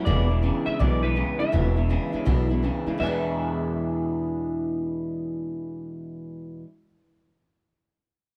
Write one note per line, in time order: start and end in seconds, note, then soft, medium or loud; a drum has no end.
0.05 0.49 E1 medium
0.05 0.30 E2 medium
0.05 0.28 E2 medium
0.05 0.30 B2 medium
0.05 0.28 B2 medium
0.05 0.30 E3 medium
0.05 0.30 G#3 loud
0.05 0.29 D4 medium
0.05 0.28 E4 loud
0.05 0.66 D5 medium
0.29 0.42 E2 medium
0.29 0.43 B2 medium
0.29 0.41 E3 soft
0.29 0.41 G#3 soft
0.29 0.42 D4 medium
0.29 0.42 E4 medium
0.42 0.65 E2 loud
0.42 0.65 C#3 loud
0.42 0.66 E3 medium
0.42 0.66 G#3 medium
0.42 0.66 D4 medium
0.42 0.65 E4 medium
0.66 0.79 E2 medium
0.66 0.79 C#3 medium
0.66 0.79 E3 soft
0.66 0.79 G#3 soft
0.66 0.79 D4 medium
0.66 0.79 E4 medium
0.66 0.79 E5 loud
0.66 muted upright bass stroke medium
0.79 1.22 B1 medium
0.79 1.03 E2 medium
0.79 1.01 E2 medium
0.79 1.03 B2 medium
0.79 1.02 B2 medium
0.79 1.03 E3 medium
0.79 1.03 G#3 medium
0.79 1.02 D4 medium
0.79 1.01 E4 medium
0.79 1.04 D5 loud
1.02 1.16 E2 medium
1.02 1.16 B2 medium
1.02 1.14 E3 soft
1.02 1.15 G#3 soft
1.02 1.15 D4 medium
1.02 1.16 E4 medium
1.02 1.37 B4 medium
1.15 1.38 E2 loud
1.15 1.38 C#3 loud
1.15 1.40 E3 medium
1.15 1.39 G#3 medium
1.15 1.39 D4 medium
1.15 1.38 E4 medium
1.39 1.52 E2 medium
1.39 1.53 C#3 medium
1.39 1.51 E3 soft
1.39 1.52 G#3 medium
1.39 1.52 D4 medium
1.39 1.52 E4 medium
1.39 2.59 E5 medium
1.39 muted upright bass stroke medium
1.52 1.96 E1 medium
1.52 1.76 E2 medium
1.52 1.75 E2 medium
1.52 1.76 B2 medium
1.52 1.75 B2 medium
1.52 1.76 E3 medium
1.52 1.76 G#3 medium
1.52 1.76 D4 medium
1.52 1.75 E4 loud
1.76 1.89 E2 medium
1.76 1.89 B2 medium
1.76 1.88 E3 soft
1.76 1.89 G#3 medium
1.76 1.89 D4 medium
1.76 1.90 E4 medium
1.89 2.12 E2 loud
1.89 2.12 C#3 loud
1.89 2.13 E3 medium
1.89 2.13 G#3 medium
1.89 2.12 D4 medium
1.89 2.11 E4 medium
2.12 2.26 E2 medium
2.12 2.26 C#3 medium
2.12 2.25 E3 soft
2.12 2.25 G#3 medium
2.12 2.25 D4 medium
2.12 2.26 E4 medium
2.12 muted upright bass stroke medium
2.25 2.69 B1 medium
2.25 2.50 E2 medium
2.25 2.49 E2 medium
2.25 2.50 B2 medium
2.25 2.49 B2 medium
2.25 2.50 E3 medium
2.25 2.49 G#3 medium
2.25 2.49 D4 loud
2.25 2.48 E4 loud
2.49 2.63 E2 medium
2.49 2.63 B2 medium
2.49 2.61 E3 soft
2.49 2.62 G#3 soft
2.49 2.62 D4 medium
2.49 2.63 E4 medium
2.62 2.85 E2 medium
2.62 2.85 C#3 loud
2.62 2.87 E3 medium
2.62 2.86 G#3 medium
2.62 2.86 D4 medium
2.62 2.85 E4 medium
2.86 2.99 E2 medium
2.86 2.99 C#3 loud
2.86 3.01 E3 soft
2.86 3.00 G#3 soft
2.86 3.00 D4 medium
2.86 3.00 E4 medium
2.86 muted upright bass stroke medium
2.98 6.61 E2 medium
2.98 6.59 E2 medium
2.98 6.63 B2 medium
2.98 6.63 E3 loud
2.98 6.65 E3 medium
2.98 6.65 B3 loud
2.98 6.59 E5 medium
3.02 6.67 G#3 loud
3.02 6.66 D4 loud
3.02 6.68 D4 loud
3.02 6.67 G#4 loud
3.07 6.70 E4 loud